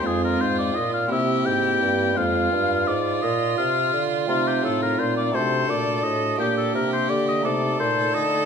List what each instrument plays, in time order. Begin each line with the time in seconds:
0.00 pipe organ G#3 C4 F4, violin F4
0.04 pipe organ F2, bassoon F2, oboe G#4
0.24 oboe A#4
0.41 pipe organ G#2, bassoon G#2, oboe C5
0.58 oboe D5
0.75 pipe organ A#2, bassoon A#2, oboe D#5
0.93 oboe F5
1.06 pipe organ A#3 C4 E4, violin G4
1.11 pipe organ C3, bassoon C3, oboe E5
1.46 bassoon G#2, pipe organ G#2, oboe G5
1.82 bassoon G2, pipe organ G2
2.13 pipe organ G#3 C4 F4, oboe F5
2.17 bassoon F2, pipe organ F2, violin F4
2.53 bassoon G2, pipe organ G2
2.88 bassoon G#2, pipe organ G#2, oboe D5
3.23 bassoon A#2, pipe organ A#2, oboe D#5
3.58 bassoon C3, pipe organ C3, oboe F5
3.93 bassoon D3, pipe organ D3
4.26 bassoon C3, pipe organ A3 C4 D#4, oboe F4
4.30 pipe organ C3
4.47 oboe G4
4.63 bassoon A2, pipe organ A2, oboe A4
4.82 oboe A#4
4.99 bassoon A#2, pipe organ A#2, oboe C5
5.17 oboe D5
5.32 bassoon C3, pipe organ A3 D4 F#4, violin A4, oboe C5
5.37 pipe organ C3
5.69 bassoon A#2, pipe organ A#2, oboe D5
6.03 bassoon A2, pipe organ A2, oboe D#5
6.37 bassoon A#2, pipe organ A#3 D4 G4, oboe G4, violin G4
6.42 pipe organ A#2
6.57 oboe A4
6.75 bassoon C3, pipe organ C3, oboe A#4
6.93 oboe C5
7.09 bassoon D3, pipe organ D3, oboe D5
7.28 oboe D#5
7.41 pipe organ A3 D#4 A4, oboe D5
7.45 bassoon C3, pipe organ C3, violin A4
7.80 bassoon A#2, pipe organ A#2, oboe C5
8.14 bassoon D3, pipe organ D3, oboe D#5